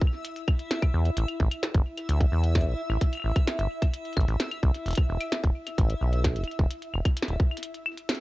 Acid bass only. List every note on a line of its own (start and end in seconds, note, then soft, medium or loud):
0.94 1.10 E2 medium
1.17 1.25 A1 loud
1.40 1.48 A1 medium
1.74 1.83 G1 medium
2.09 2.26 D2 medium
2.32 2.68 E2 medium
2.67 2.75 A1 medium
2.90 2.98 A1 loud
3.24 3.33 A1 medium
3.59 3.67 G1 medium
4.17 4.25 A1 medium
4.28 4.37 A1 loud
4.63 4.71 C2 medium
4.86 4.94 E1 loud
5.09 5.17 E1 medium
5.44 5.52 D1 medium
5.78 5.95 A1 medium
6.01 6.37 B1 medium
6.36 6.44 E1 medium
6.59 6.67 E1 loud
6.94 7.02 E1 medium
7.28 7.37 D1 medium